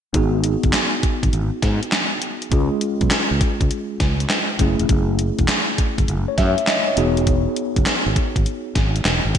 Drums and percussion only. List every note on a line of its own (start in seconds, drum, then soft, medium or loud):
0.14 kick loud
0.14 closed hi-hat medium
0.44 closed hi-hat medium
0.63 kick medium
0.63 closed hi-hat soft
0.73 snare loud
0.73 clap medium
0.73 closed hi-hat medium
1.03 kick loud
1.03 closed hi-hat medium
1.23 kick loud
1.23 closed hi-hat medium
1.33 closed hi-hat medium
1.62 kick medium
1.62 snare medium
1.62 closed hi-hat medium
1.83 closed hi-hat medium
1.92 snare loud
1.92 clap medium
1.92 closed hi-hat medium
2.22 closed hi-hat medium
2.42 closed hi-hat soft
2.52 kick loud
2.52 closed hi-hat medium
2.81 closed hi-hat medium
3.01 kick medium
3.01 closed hi-hat soft
3.11 snare loud
3.11 clap medium
3.11 closed hi-hat medium
3.41 kick loud
3.41 closed hi-hat medium
3.61 kick loud
3.61 closed hi-hat medium
3.71 closed hi-hat medium
4.00 kick medium
4.00 snare medium
4.00 closed hi-hat medium
4.20 closed hi-hat medium
4.30 snare loud
4.30 clap medium
4.30 closed hi-hat medium
4.59 kick loud
4.59 closed hi-hat medium
4.79 closed hi-hat soft
4.89 kick loud
4.89 closed hi-hat medium
5.19 closed hi-hat medium
5.39 kick medium
5.39 closed hi-hat soft
5.48 snare loud
5.48 clap medium
5.48 closed hi-hat medium
5.78 kick medium
5.78 closed hi-hat medium
5.98 kick medium
5.98 closed hi-hat medium
6.08 closed hi-hat medium
6.38 kick medium
6.38 snare medium
6.38 closed hi-hat medium
6.58 closed hi-hat medium
6.67 snare medium
6.67 clap medium
6.67 closed hi-hat medium
6.97 closed hi-hat medium
7.17 closed hi-hat medium
7.27 kick loud
7.27 closed hi-hat medium
7.56 closed hi-hat medium
7.76 kick medium
7.76 closed hi-hat medium
7.86 snare loud
7.86 clap medium
7.86 closed hi-hat medium
8.16 kick loud
8.16 closed hi-hat medium
8.36 kick loud
8.36 closed hi-hat medium
8.46 closed hi-hat medium
8.75 kick medium
8.75 snare medium
8.75 closed hi-hat medium
8.96 closed hi-hat medium
9.05 snare loud
9.05 clap medium
9.05 closed hi-hat medium
9.35 kick loud
9.35 closed hi-hat medium